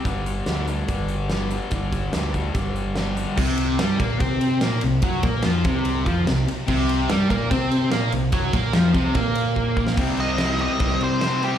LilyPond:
<<
  \new Staff \with { instrumentName = "Lead electric guitar" } { \time 4/4 \key c \mixolydian \tempo 4 = 145 r1 | r1 | r1 | r1 |
r1 | r1 | r8 ees''4 ees''4 c''4 g'8 | }
  \new Staff \with { instrumentName = "Overdriven electric guitar" } { \clef bass \time 4/4 \key c \mixolydian r1 | r1 | r1 | r1 |
c4 g8 bes8 c'4 bes8 c8 | fis8 bes8 f8 c8 bes2 | r1 | }
  \new Staff \with { instrumentName = "Overdriven electric guitar" } { \clef bass \time 4/4 \key c \mixolydian r1 | r1 | c4 g8 bes8 c'4 bes8 c8 | fis8 bes8 f8 c4 f8 c8 r8 |
c4 g8 bes8 c'4 bes8 c8 | fis8 bes8 f8 c8 bes2 | <c g c' e'>4 <c g c' e'>8 <c g c' e'>8 <c g c' e'>4 <c g c' e'>8 <c g c' e'>8 | }
  \new Staff \with { instrumentName = "Distorted electric guitar" } { \clef bass \time 4/4 \key c \mixolydian <g, d g>4 <g, d g>8 <g, d g>8 <g, d g>4 <g, d g>8 <g, d g>8 | <g, d g>4 <g, d g>8 <g, d g>8 <g, d g>4 <g, d g>8 <g, d g>8 | c4 g8 bes8 c'4 bes8 c8 | fis8 bes8 f8 c4 f8 c8 r8 |
c4 g8 bes8 c'4 bes8 c8 | fis8 bes8 f8 c8 bes2 | <c g c'>4 <c g c'>8 <c g c'>8 <c g c'>4 <c g c'>8 <c g c'>8 | }
  \new Staff \with { instrumentName = "Picked electric bass" } { \clef bass \time 4/4 \key c \mixolydian g,,4 d,4 g,,2 | g,,4 d,4 g,,2 | c,4 g,8 bes,8 c4 bes,8 c,8 | fis,8 bes,8 f,8 c,4 f,8 c,8 r8 |
c,4 g,8 bes,8 c4 bes,8 c,8 | fis,8 bes,8 f,8 c,8 bes,2 | c,2 c,8 c4. | }
  \new DrumStaff \with { instrumentName = "Drums" } \drummode { \time 4/4 <hh bd>8 hh8 <hh sn>8 hh8 <hh bd>8 hh8 <hh sn>8 hh8 | <hh bd>8 <hh bd>8 <hh sn>8 <hh bd>8 <hh bd>8 hh8 <hh sn>8 hh8 | <cymc bd>16 sn16 cymr8 <cymr sn>8 <bd cymr>8 <bd cymr>8 cymr8 <cymr sn>8 cymr8 | <bd cymr>8 <bd cymr>8 <cymr sn>8 <bd cymr>8 cymr8 <bd cymr>8 <cymr sn>8 cymr8 |
<cymc bd>16 sn16 cymr8 <cymr sn>8 <bd cymr>8 <bd cymr>8 cymr8 <cymr sn>8 cymr8 | <bd cymr>8 <bd cymr>8 <cymr sn>8 <bd cymr>8 <bd cymr>8 cymr8 bd8 bd16 sn16 | <cymc bd>8 cymc8 <cymc sn>8 cymc8 <cymc bd>8 cymc8 <cymc sn>8 cymc8 | }
>>